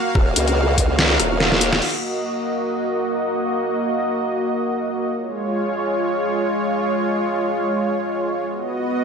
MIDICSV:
0, 0, Header, 1, 4, 480
1, 0, Start_track
1, 0, Key_signature, -6, "minor"
1, 0, Tempo, 500000
1, 8680, End_track
2, 0, Start_track
2, 0, Title_t, "Supersaw synth"
2, 0, Program_c, 0, 81
2, 0, Note_on_c, 0, 58, 81
2, 0, Note_on_c, 0, 66, 74
2, 0, Note_on_c, 0, 77, 86
2, 1707, Note_off_c, 0, 58, 0
2, 1707, Note_off_c, 0, 66, 0
2, 1709, Note_off_c, 0, 77, 0
2, 1746, Note_on_c, 0, 58, 77
2, 1746, Note_on_c, 0, 66, 71
2, 1746, Note_on_c, 0, 75, 82
2, 4914, Note_off_c, 0, 58, 0
2, 4914, Note_off_c, 0, 66, 0
2, 4914, Note_off_c, 0, 75, 0
2, 4947, Note_on_c, 0, 73, 83
2, 4948, Note_on_c, 0, 56, 78
2, 4948, Note_on_c, 0, 65, 70
2, 8115, Note_off_c, 0, 56, 0
2, 8115, Note_off_c, 0, 65, 0
2, 8115, Note_off_c, 0, 73, 0
2, 8148, Note_on_c, 0, 59, 78
2, 8148, Note_on_c, 0, 66, 71
2, 8148, Note_on_c, 0, 75, 83
2, 8680, Note_off_c, 0, 59, 0
2, 8680, Note_off_c, 0, 66, 0
2, 8680, Note_off_c, 0, 75, 0
2, 8680, End_track
3, 0, Start_track
3, 0, Title_t, "Wobble bass"
3, 0, Program_c, 1, 39
3, 147, Note_on_c, 1, 27, 96
3, 332, Note_off_c, 1, 27, 0
3, 347, Note_on_c, 1, 37, 93
3, 732, Note_off_c, 1, 37, 0
3, 747, Note_on_c, 1, 37, 98
3, 1132, Note_off_c, 1, 37, 0
3, 1147, Note_on_c, 1, 27, 95
3, 1732, Note_off_c, 1, 27, 0
3, 8680, End_track
4, 0, Start_track
4, 0, Title_t, "Drums"
4, 146, Note_on_c, 9, 36, 123
4, 147, Note_on_c, 9, 37, 56
4, 242, Note_off_c, 9, 36, 0
4, 243, Note_off_c, 9, 37, 0
4, 347, Note_on_c, 9, 42, 76
4, 443, Note_off_c, 9, 42, 0
4, 457, Note_on_c, 9, 42, 38
4, 553, Note_off_c, 9, 42, 0
4, 746, Note_on_c, 9, 36, 59
4, 748, Note_on_c, 9, 42, 80
4, 842, Note_off_c, 9, 36, 0
4, 844, Note_off_c, 9, 42, 0
4, 947, Note_on_c, 9, 38, 119
4, 1043, Note_off_c, 9, 38, 0
4, 1148, Note_on_c, 9, 37, 57
4, 1148, Note_on_c, 9, 42, 82
4, 1244, Note_off_c, 9, 37, 0
4, 1244, Note_off_c, 9, 42, 0
4, 1348, Note_on_c, 9, 38, 63
4, 1444, Note_off_c, 9, 38, 0
4, 1457, Note_on_c, 9, 38, 66
4, 1547, Note_on_c, 9, 42, 87
4, 1553, Note_off_c, 9, 38, 0
4, 1643, Note_off_c, 9, 42, 0
4, 1656, Note_on_c, 9, 38, 89
4, 1748, Note_on_c, 9, 49, 84
4, 1752, Note_off_c, 9, 38, 0
4, 1844, Note_off_c, 9, 49, 0
4, 8680, End_track
0, 0, End_of_file